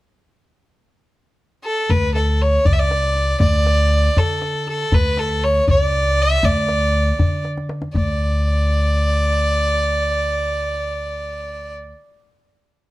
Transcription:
1.64 A4
1.90 D2 B4, tombak dum
2.03 tombak ka
2.15 A4, tombak tek
2.42 C#5
2.65 C#2 D5, tombak dum
2.73 E5
2.79 D5
2.91 tombak tek
3.03 tombak ka
3.16 tombak ka
3.40 D2 D5, tombak dum
3.54 tombak ka
3.66 tombak tek
4.16 D3 A4, tombak dum
4.42 tombak tek
4.55 tombak ka
4.67 A4, tombak ka
4.92 D2 B4, tombak dum
5.04 tombak ka
5.17 A4, tombak tek
5.44 C#5
5.68 C#2 D5, tombak dum
6.05 tombak ka
6.19 E5, tombak ka
6.43 D2 D5, tombak dum
6.57 tombak ka
6.68 tombak tek
7.19 D3, tombak dum
7.45 tombak tek
7.57 tombak ka
7.69 tombak tek
7.82 tombak ka
7.94 D2 D5, tombak dum

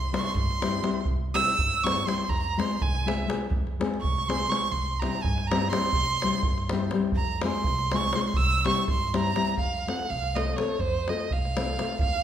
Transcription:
Already playing: C2 C6
0.12 G3 C4 E4 G4 C6, davul high
0.19 C#6
0.25 C6, davul high
0.34 G2 C6, davul low
0.50 davul high
0.62 G3 C4 E4 G4, davul high
0.82 G3 C4 E4 G4, davul high
1.05 C2, davul low
1.34 G3 C4 E4 G4 E6, davul high
1.47 davul high
1.58 G2, davul low
1.73 davul high
1.83 G3 C4 E4 G4 C#6, davul high
2.06 G3 C4 E4 G4 C6, davul high
2.28 F2 A#5, davul low
2.57 G#3 C4 F4 G#4 C6, davul high
2.71 davul high
2.81 C2 G#5, davul low
2.95 davul high
3.06 G#3 C4 F4 G#4 E5, davul high
3.27 G#3 C4 F4 G#4, davul high
3.50 F2, davul low
3.67 davul high
3.79 G#3 C4 F4 G#4, davul high
3.94 davul high
4.01 C2 C#6, davul low
4.18 davul high
4.28 G#3 C4 F4 G#4 C6, davul high
4.50 G#3 C4 F4 G#4 C#6, davul high
4.62 davul high
4.71 C2 C6, davul low
5.00 G3 C4 E4 A#5, davul high
5.04 G4
5.15 davul high
5.22 G2 G#5, davul low
5.38 davul high
5.47 G3 C4 A#5
5.51 E4 G4, davul high
5.69 G3 C4 E4 C6, davul high
5.73 G4
5.93 C2, davul low
6.22 G3 C4 E4 G4, davul high
6.34 davul high
6.43 G2, davul low
6.58 davul high
6.69 G3 C4 E4 G4, davul high
6.91 G3 C4 E4 G4, davul high
7.12 F2, davul low
7.16 A#5
7.41 G#3 C4 F4 G#4, davul high
7.46 C6
7.54 davul high
7.64 C2, davul low
7.78 davul high
7.92 G#3 C4 F4 G#4, davul high
7.96 C#6
8.13 G#3 C4 F4 G#4 C6, davul high
8.21 C#6
8.27 C6
8.34 C2 E6, davul low
8.51 davul high
8.65 G3 C4 E4 G4 C#6, davul high
8.88 G2 C6, davul low
9.07 C6
9.13 G3 C4 E4 G4 A#5, davul high
9.36 G3 C4 E4 G4, davul high
9.47 davul high
9.57 F2 F5, davul low
9.87 A3 C4 F4 A4 F#5, davul high
10.00 davul high
10.10 C2 F5, davul low
10.23 davul high
10.35 A3 C4 F4 A4 D#5, davul high
10.56 A3 C4 F4 A4 C#5, davul high
10.79 F2 C5, davul low
11.08 A3 C4 F4 A4 D#5, davul high
11.20 davul high
11.31 C2 F5, davul low
11.45 davul high
11.57 A3 C4 F4 A4, davul high
11.79 A3 C4 F4 A4, davul high
11.99 D#2 F5, davul low

